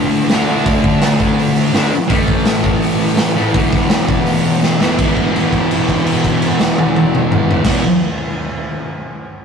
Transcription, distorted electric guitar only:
0.00 0.28 D3 medium
0.00 0.32 A3 loud
0.00 0.32 D4 loud
0.30 0.46 D3 medium
0.30 0.49 A3 medium
0.30 0.49 D4 medium
0.47 1.72 D3 medium
0.47 1.74 A3 medium
0.52 1.75 D4 medium
1.73 1.91 D3 medium
1.73 1.92 A3 medium
1.73 1.93 D4 medium
2.08 3.34 A2 medium
2.08 3.37 E3 loud
2.12 3.34 A3 loud
3.36 3.55 A2 medium
3.36 3.57 E3 medium
3.36 3.53 A3 medium
3.53 4.78 E2 medium
3.53 4.80 B2 medium
3.58 4.79 E3 loud
4.80 4.98 B2 medium
4.80 4.97 E3 medium
4.84 4.97 E2 medium
4.99 7.64 E2 medium
4.99 7.66 B2 loud
5.03 7.67 E3 loud
7.64 7.81 E2 medium
7.64 7.82 B2 loud
7.64 7.82 E3 loud

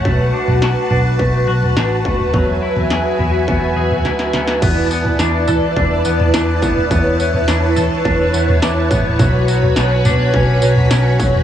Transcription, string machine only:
0.00 2.30 F#5 medium
0.05 2.32 F#4 medium
0.05 4.58 B4 medium
0.05 2.31 A5 medium
2.34 4.60 F#4 medium
2.34 4.61 E5 medium
2.34 4.60 G#5 medium
4.62 9.16 E4 medium
4.62 9.16 B4 medium
4.62 6.89 D5 medium
4.62 9.16 A5 medium
6.90 11.43 C#5 medium
9.19 11.43 F#4 medium
9.19 11.43 B4 medium
9.19 11.43 B5 medium

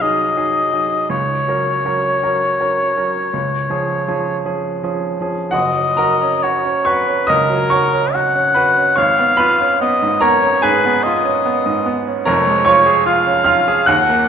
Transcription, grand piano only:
0.00 1.13 C2 soft
0.00 0.02 F#3 soft
0.00 0.34 F#3 soft
0.00 0.03 D#4 soft
0.00 0.34 D#4 soft
0.00 0.03 G#4 soft
0.00 0.34 G#4 soft
0.37 0.69 F#3 soft
0.37 0.69 D#4 soft
0.37 0.69 G#4 soft
0.73 1.06 F#3 soft
0.73 1.06 D#4 soft
0.73 1.07 G#4 soft
1.10 1.46 C#2 soft
1.48 1.81 F#3 soft
1.48 1.82 C#4 soft
1.48 1.82 A#4 soft
1.85 2.19 F#3 soft
1.85 2.19 C#4 soft
1.85 2.19 A#4 soft
2.23 2.56 F#3 soft
2.23 2.56 C#4 soft
2.23 2.56 A#4 soft
2.60 2.93 F#3 soft
2.60 2.93 C#4 soft
2.60 2.93 A#4 soft
2.97 3.30 F#3 soft
2.97 3.30 C#4 soft
2.97 3.30 A#4 soft
3.33 3.69 C#2 soft
3.70 4.03 F3 soft
3.70 4.03 C#4 soft
3.70 4.03 G#4 soft
4.08 4.41 F3 soft
4.08 4.41 C#4 soft
4.08 4.41 G#4 soft
4.45 4.79 F3 soft
4.45 4.79 C#4 soft
4.45 4.79 G#4 soft
4.83 5.17 F3 soft
4.83 5.17 C#4 soft
4.83 5.17 G#4 soft
5.21 5.50 F3 soft
5.21 5.50 C#4 soft
5.21 5.50 G#4 soft
5.51 7.25 F#1 soft
5.51 5.95 F#4 medium
5.51 5.97 F#5 medium
5.77 6.12 F#3 soft
5.97 6.34 F#4 medium
5.97 6.82 A#4 medium
5.97 6.85 A#5 medium
6.22 6.56 C#4 soft
6.44 6.78 F#4 medium
6.65 6.99 C#4 soft
6.85 7.21 F#4 soft
6.85 7.26 C#5 medium
6.85 7.28 C#6 medium
7.08 7.42 C#4 soft
7.27 7.63 C#2 soft
7.27 7.68 D#5 medium
7.27 7.71 D#6 loud
7.50 7.84 F#3 soft
7.70 8.06 F#4 soft
7.70 8.51 C#5 medium
7.70 8.55 C#6 medium
7.93 8.27 C#4 medium
8.15 8.48 F#4 medium
8.35 8.69 C#4 soft
8.55 8.90 F#4 soft
8.55 8.94 B4 medium
8.55 8.97 B5 medium
8.78 8.98 C#4 soft
8.96 10.60 G#1 medium
8.96 9.36 C#5 medium
8.96 9.38 C#6 medium
9.19 9.52 B3 soft
9.37 9.72 F4 medium
9.37 10.18 B4 medium
9.37 10.21 B5 medium
9.61 9.93 C#4 soft
9.81 10.14 B3 medium
10.02 10.35 G#2 soft
10.21 10.56 B3 medium
10.21 10.60 A#4 medium
10.21 10.63 A#5 medium
10.43 10.76 C#4 medium
10.62 10.96 G#2 medium
10.62 11.81 G#4 medium
10.62 11.85 G#5 medium
10.86 11.17 B3 medium
11.06 11.37 F4 medium
11.25 11.57 C#4 medium
11.46 11.78 B3 medium
11.66 11.98 G#2 soft
11.86 12.18 B3 medium
12.07 12.27 C#4 soft
12.25 13.85 F1 medium
12.25 13.85 F2 medium
12.25 12.64 A#4 medium
12.25 12.66 A#5 medium
12.47 12.79 G#3 medium
12.65 12.99 F4 medium
12.65 13.42 C#5 medium
12.65 13.46 C#6 loud
12.86 13.18 G#4 medium
13.06 13.38 F4 medium
13.27 13.60 C#4 medium
13.44 13.80 F4 medium
13.44 13.85 F5 medium
13.44 13.87 F6 loud
13.68 13.89 G#4 medium
13.86 14.28 D#2 medium
13.86 14.28 F#5 medium
13.86 14.28 F#6 loud
14.09 14.28 A#3 medium

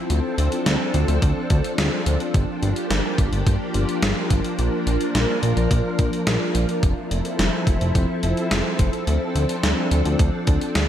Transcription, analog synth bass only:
0.10 0.21 D2 loud
0.38 0.49 D2 medium
0.66 0.77 D2 medium
0.94 1.05 D2 loud
1.08 1.19 D2 loud
1.22 1.33 D2 loud
1.50 1.61 D2 loud
1.78 1.89 D2 loud
2.06 2.17 D2 loud
2.34 2.45 G1 loud
2.62 2.73 G1 loud
2.90 3.01 G1 loud
3.18 3.29 G1 loud
3.32 3.43 G1 loud
3.47 3.57 G1 loud
3.75 3.85 G1 loud
4.03 4.13 G1 loud
4.31 4.41 G1 loud
4.59 4.69 A#1 loud
4.87 4.97 A#1 loud
5.15 5.25 A#1 loud
5.43 5.53 A#1 loud
5.57 5.67 A#1 medium
5.71 5.81 A#1 loud
5.99 6.10 A#1 loud
6.27 6.38 A#1 loud
6.55 6.66 A#1 loud
6.83 6.94 F1 loud
7.11 7.22 F1 loud
7.39 7.50 F1 loud
7.67 7.78 F1 loud
7.81 7.92 F1 loud
7.95 8.06 F1 loud
8.23 8.34 F1 medium
8.51 8.62 F1 loud
8.79 8.90 F1 loud
9.07 9.18 D2 loud
9.35 9.46 D2 loud
9.63 9.74 D2 medium
9.91 10.02 D2 loud
10.05 10.16 D2 loud
10.19 10.30 D2 loud
10.47 10.58 D2 loud
10.76 10.86 D2 loud

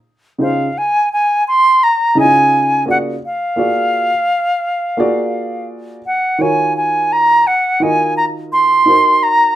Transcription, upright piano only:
0.38 0.66 C#3 medium
0.38 0.67 D#4 medium
0.38 0.67 F4 medium
0.38 0.67 G#4 medium
0.38 0.68 C5 medium
2.15 3.16 C#3 medium
2.15 3.16 D#4 medium
2.15 2.24 E4 medium
2.15 2.86 G#4 medium
2.15 3.17 D#5 medium
2.23 2.85 F4 medium
2.86 3.13 A#3 medium
2.86 3.14 F4 medium
2.86 3.14 F#4 medium
2.86 3.14 G#4 medium
2.86 3.15 D5 medium
3.56 4.09 A#3 medium
3.56 4.10 F4 medium
3.56 4.10 F#4 medium
3.56 4.10 G#4 medium
3.56 4.11 D5 medium
4.97 5.98 A#3 medium
4.97 5.99 F4 medium
4.97 5.99 F#4 medium
4.97 5.99 G#4 medium
4.97 6.00 D5 medium
6.38 7.39 D#3 medium
6.38 7.40 F4 medium
6.38 7.40 F#4 medium
6.38 7.41 A#4 medium
6.38 7.41 C#5 medium
7.80 8.81 D#3 medium
7.80 8.81 F4 medium
7.80 8.81 F#4 medium
7.80 8.82 A#4 medium
7.80 8.82 D#5 medium
8.86 9.55 D#4 medium
8.86 9.55 F#4 medium
8.86 9.55 A#4 medium
8.86 9.55 C5 medium

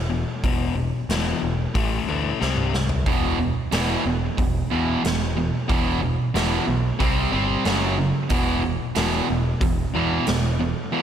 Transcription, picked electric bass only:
0.00 0.24 E1 medium
0.44 0.90 E1 medium
1.09 1.32 E1 medium
1.43 1.66 E1 medium
1.75 1.98 A1 medium
2.09 2.31 D2 medium
2.42 3.08 C2 medium
3.06 3.52 E1 medium
3.73 3.95 E1 medium
4.06 4.28 E1 medium
4.39 4.61 E1 medium
4.72 4.94 E2 medium
5.05 5.50 E1 medium
5.70 6.15 E1 medium
6.35 6.58 E1 medium
6.68 6.91 B1 medium
7.01 7.23 C2 medium
7.32 7.55 G1 medium
7.66 8.11 F#1 medium
8.31 8.76 E1 medium
8.97 9.19 E1 medium
9.30 9.53 E1 medium
9.62 9.84 E1 medium
9.95 10.18 E2 medium
10.28 10.73 E1 medium

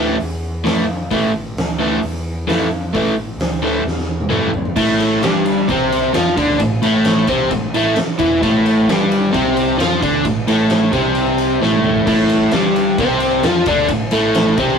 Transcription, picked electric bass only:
0.00 0.16 D2 medium
0.21 0.63 E2 medium
0.65 1.08 F2 medium
1.11 1.53 A1 medium
1.56 1.99 D2 loud
2.03 2.45 E2 medium
2.47 2.90 F2 medium
2.95 3.37 A1 medium
3.38 3.81 D2 loud
3.84 4.27 E2 medium
4.31 4.73 F2 medium
4.76 5.19 A1 medium
5.22 5.65 G1 loud
5.68 6.11 C2 loud
6.15 6.36 F2 loud
6.37 6.58 D2 loud
6.60 6.81 A1 medium
6.84 7.26 A1 medium
7.28 7.49 C2 loud
7.51 7.72 A1 medium
7.75 7.96 A1 medium
7.99 muted picked electric bass stroke soft
8.20 8.41 E2 loud
8.43 8.85 A1 medium
8.87 9.30 G1 loud
9.34 9.76 C2 loud
9.79 10.00 F2 loud
10.02 10.23 D2 loud
10.25 10.46 A1 medium
10.47 10.90 A1 medium
10.93 11.57 C2 loud
11.62 12.04 A1 loud
12.07 12.50 A1 loud
12.51 12.94 G1 loud
12.99 13.41 C2 loud
13.42 13.64 F2 loud
13.67 13.88 D2 medium
13.89 14.11 A1 medium
14.11 14.54 A1 loud
14.57 14.79 C2 loud

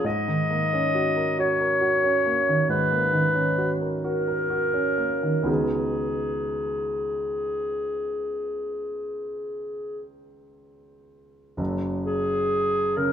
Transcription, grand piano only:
0.04 2.65 G#2 soft
0.28 0.64 D#3 soft
0.50 0.86 A#3 soft
0.73 1.08 C#4 soft
0.95 1.29 F#4 soft
1.16 1.51 A#4 soft
1.39 1.73 F#4 soft
1.60 1.95 A#4 soft
1.81 2.16 F#4 soft
2.04 2.39 C#4 soft
2.26 2.61 A#3 soft
2.49 2.83 D#3 soft
2.69 5.44 G#2 soft
2.92 3.26 A#3 soft
3.14 3.49 D#3 soft
3.35 3.70 C#4 soft
3.58 3.93 F#4 soft
3.81 4.17 A#4 soft
4.04 4.40 F#4 soft
4.27 4.64 A#4 soft
4.50 4.88 F#4 soft
4.74 5.13 C#4 soft
4.98 5.38 A#3 soft
5.23 5.48 D#3 soft
5.43 11.53 C#2 soft
5.43 11.53 B3 soft
5.43 11.54 D#4 soft
5.43 11.54 F#4 soft
5.43 11.54 G#4 soft
11.57 13.13 F#1 soft
11.57 13.13 F#2 soft
12.97 13.13 C#3 soft

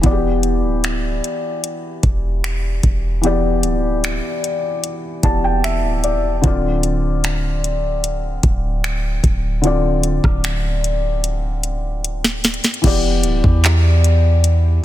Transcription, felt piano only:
0.01 3.19 E3 medium
0.01 3.19 B3 medium
0.01 0.11 F#4 soft
0.06 3.21 D5 medium
0.11 3.23 G4 medium
3.21 5.19 E3 medium
3.21 5.19 B3 medium
3.21 5.20 G4 medium
3.26 5.21 D5 medium
5.23 6.43 E3 medium
5.23 6.44 B3 medium
5.23 6.44 G4 medium
5.23 6.03 D5 medium
5.23 5.43 A5 medium
5.44 5.63 G5 medium
5.64 6.01 E5 medium
6.04 6.41 D5 medium
6.42 9.59 D3 medium
6.42 9.60 C4 medium
6.42 9.60 F4 medium
6.47 9.61 D5 medium
9.62 12.79 D3 medium
9.62 12.80 C4 medium
9.62 12.80 F4 medium
9.67 12.81 D5 medium
12.82 14.85 E3 medium
12.82 14.85 B3 medium
12.82 14.85 G4 medium
12.87 14.85 D5 medium

